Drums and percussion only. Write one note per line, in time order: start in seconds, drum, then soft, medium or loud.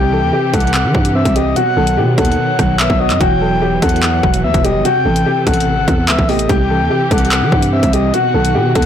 0.54 kick loud
0.54 closed hi-hat medium
0.60 closed hi-hat medium
0.67 closed hi-hat medium
0.74 clap loud
0.74 closed hi-hat medium
0.95 kick loud
1.05 closed hi-hat medium
1.25 kick loud
1.25 closed hi-hat medium
1.36 closed hi-hat medium
1.56 closed hi-hat medium
1.87 closed hi-hat medium
2.18 kick loud
2.18 closed hi-hat medium
2.25 closed hi-hat medium
2.32 closed hi-hat soft
2.59 kick medium
2.59 cross-stick medium
2.59 closed hi-hat medium
2.80 clap loud
2.80 closed hi-hat medium
2.90 kick loud
3.10 clap medium
3.10 closed hi-hat medium
3.21 kick loud
3.21 closed hi-hat medium
3.82 kick loud
3.82 closed hi-hat medium
3.89 closed hi-hat medium
3.96 closed hi-hat soft
4.03 clap loud
4.03 closed hi-hat medium
4.23 kick loud
4.34 closed hi-hat medium
4.54 kick loud
4.54 closed hi-hat medium
4.64 closed hi-hat medium
4.85 closed hi-hat medium
5.16 closed hi-hat medium
5.47 kick loud
5.47 closed hi-hat medium
5.54 closed hi-hat medium
5.60 closed hi-hat medium
5.88 kick loud
5.88 closed hi-hat medium
6.08 clap loud
6.08 closed hi-hat medium
6.19 kick loud
6.29 open hi-hat medium
6.39 closed hi-hat medium
6.49 kick loud
6.49 closed hi-hat medium
7.11 kick loud
7.11 closed hi-hat medium
7.18 closed hi-hat medium
7.25 closed hi-hat soft
7.32 clap loud
7.32 closed hi-hat medium
7.52 kick loud
7.62 closed hi-hat medium
7.83 kick loud
7.83 closed hi-hat medium
7.93 closed hi-hat medium
8.14 closed hi-hat medium
8.45 closed hi-hat medium
8.75 kick loud
8.75 closed hi-hat medium
8.82 closed hi-hat medium